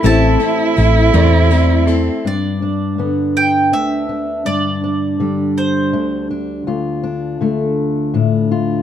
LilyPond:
<<
  \new Staff \with { instrumentName = "Mandolin" } { \time 6/8 \key g \mixolydian \tempo 4. = 54 a''2~ a''8 r8 | d''4. g''8 e''4 | d''4. c''4 r8 | r2. | }
  \new Staff \with { instrumentName = "Cello" } { \time 6/8 \key g \mixolydian e'2~ e'8 c'8 | r2. | r2. | r2. | }
  \new Staff \with { instrumentName = "Upright piano" } { \time 6/8 \key g \mixolydian <a c' e' c'' e''>4. <a c' e' c'' d''>4. | r2. | r2. | r2. | }
  \new Staff \with { instrumentName = "Upright piano" } { \clef bass \time 6/8 \key g \mixolydian <a,, a,>2. | r2. | r2. | r2. | }
  \new Staff \with { instrumentName = "Steel-string acoustic guitar" } { \time 6/8 \key g \mixolydian << { r2. | d'8 d'8 b4 d'8 d'8 | d'8 d'8 g4 d'8 d'8 | f'8 d'8 a4 d'8 f'8 | } \\ { r2. | g,4 d4 d,4 | g,4 d4 d,4 | d,4 d4 a,4 | } >> }
  \new Staff \with { instrumentName = "Steel-string acoustic guitar" } { \time 6/8 \key g \mixolydian <a, e a c' e' a'>8 <a c' e' a'>8 <a c' e' a'>8 <a, e a c' e' a'>8 <a c' e' a'>8 <a c' e' a'>8 | r2. | r2. | r2. | }
  \new Staff \with { instrumentName = "Fingered electric bass" } { \clef bass \time 6/8 \key g \mixolydian a,,8 r8 a,,8 e,4. | r2. | r2. | r2. | }
>>